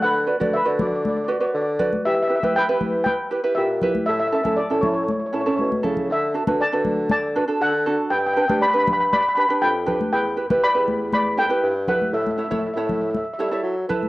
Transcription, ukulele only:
\new Staff \with { instrumentName = "Ukulele" } { \time 4/4 \key e \dorian \tempo 4 = 119 r8 <fis' b' d''>16 <fis' b' d''>16 r16 <fis' b' d''>8. r8 <fis' b' d''>16 <fis' b' cis''>8 r16 <fis' b' d''>8 | r8 <e' g' b'>16 <e' g' b'>16 r16 <e' g' b'>8. r8 <e' g' b'>16 <e' g' b'>8 r16 <e' g' b'>8 | r8 <cis' e' a'>16 <cis' e' a'>16 r16 <cis' e' a'>8. r8 <cis' e' a'>16 <cis' e' a'>8 r16 <cis' e' a'>8 | r8 <d' fis' a'>16 <d' fis' b'>16 r16 <d' fis' b'>8. r8 <d' fis' b'>16 <d' fis' a'>8 r16 <d' fis' a'>8 |
r8 <d' g' b'>16 <d' g' b'>16 r16 <d' g' b'>8. r8 <d' g' b'>16 <d' g' b'>8 r16 <d' g' b'>8 | r8 <e' g' b'>16 <e' g' b'>16 r16 <e' g' b'>8. r8 <e' g' a'>16 <e' g' b'>8 r16 <e' g' b'>8 | r8 <e' a' cis''>16 <e' a' cis''>16 r16 <e' a' cis''>8. r8 <e' a' cis''>16 <e' a' cis''>8 r16 <e' a' b'>8 | }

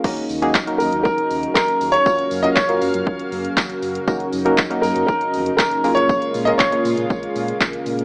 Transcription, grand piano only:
\new Staff \with { instrumentName = "Grand piano" } { \time 4/4 \key ees \minor \tempo 4 = 119 r4. bes'8 bes'4 bes'8. des''16~ | des''8. ees''16 des''2 r4 | r4. bes'8 bes'4 bes'8. des''16~ | des''8. ees''16 des''2 r4 | }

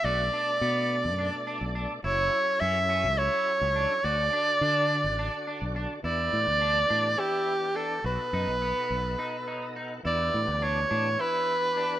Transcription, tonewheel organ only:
\new Staff \with { instrumentName = "Tonewheel organ" } { \time 7/8 \key e \dorian \tempo 4 = 105 << { r2. r8 | r2. r8 | r2. r8 | r2. r8 |
r2 r8 cis''16 dis''16 fis''8 | r2. r8 | } \\ { <b, a d' d''>2.~ <b, a d' d''>8 | <fis cis' e' a'>2.~ <fis cis' e' a'>8 | <d d' fis' d''>2.~ <d d' fis' d''>8 | <e b d' g'>2.~ <e b d' g'>8 |
<b, b dis' a'>2.~ <b, b dis' a'>8 | <e b d' g'>2.~ <e b d' g'>8 | } >> }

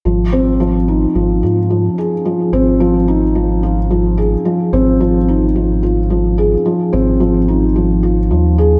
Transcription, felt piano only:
\new Staff \with { instrumentName = "Felt piano" } { \clef bass \time 4/4 \key aes \major \tempo 4 = 109 f8 c'8 f8 ees'8 f8 f'8 f8 aes'8 | f8 c'8 f8 ees'8 f8 f'8 f8 aes'8 | f8 c'8 f8 ees'8 f8 f'8 f8 aes'8 | f8 c'8 f8 ees'8 f8 f'8 f8 aes'8 | }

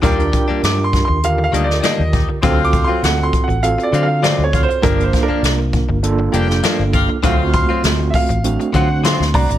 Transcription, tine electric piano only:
\new Staff \with { instrumentName = "Tine electric piano" } { \time 4/4 \key d \phrygian \tempo 4 = 100 <d' f' g' bes'>2 <d f' g' bes'>2 | <c' eis' fis' a'>2 <c' eis' fis' a'>2 | <bes d' f' bes'>2 <bes d' f' a'>2 | <a c' eis' fis'>2 <a c' d' fis'>2 | }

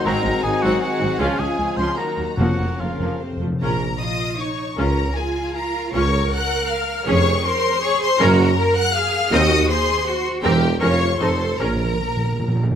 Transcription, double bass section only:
\new Staff \with { instrumentName = "Double bass section" } { \clef bass \time 3/4 \key bes \minor \tempo 4 = 157 aes,,8 aes,,8 aes,,8 aes,,8 r8 aes,,8 | des,8 des,8 des,8 des,8 r8 ees,8 | f,,8 f,,8 f,,8 f,,8 r8 f,,8 | bes,,4 r2 |
des,4 r2 | des,4 r2 | f,4 r2 | ges,4 r2 |
ees,4 r2 | e,4 f,4 f,4 | bes,,4 r2 | }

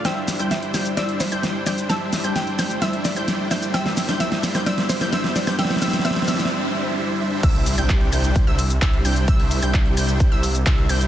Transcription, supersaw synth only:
\new Staff \with { instrumentName = "Supersaw synth" } { \time 4/4 \key c \major \tempo 4 = 130 <g d' e' c'' e''>8. <g d' e' c'' g''>8. <g d' e' c'' g''>8 <g d' e' c'' e''>8. <g d' e' c'' g''>8. <g d' e' c'' g''>8 | <g d' e' c'' e''>8. <g d' e' c'' g''>8. <g d' e' c'' g''>8 <g d' e' c'' e''>8. <g d' e' c'' g''>8. <g d' e' c'' g''>8 | <g d' e' c'' e''>8. <g d' e' c'' g''>16 <g d' e' c'' e''>8. <g d' e' c'' g''>16 <g d' e' c'' e''>8. <g d' e' c'' g''>16 <g d' e' c'' e''>8. <g d' e' c'' g''>16 | <g d' e' c'' e''>8 <g d' e' c'' e''>8 <g d' e' c'' e''>8 <g d' e' c'' e''>8 <g d' e' c'' e''>8 <g d' e' c'' e''>8 <g d' e' c'' e''>8 <g d' e' c'' e''>8 |
<g d' e' c'' e''>8. <g d' e' c'' g''>8. <g d' e' c'' g''>8. <g d' e' c'' e''>16 r8 <g d' e' c'' e''>8 <g d' e' c'' g''>8 | <g d'>8. <g d' e' c'' g''>8. <g d' e' c'' g''>8. <g d' e' c'' e''>16 r8 <g d' e' c'' e''>8 <g d' e' c'' g''>8 | }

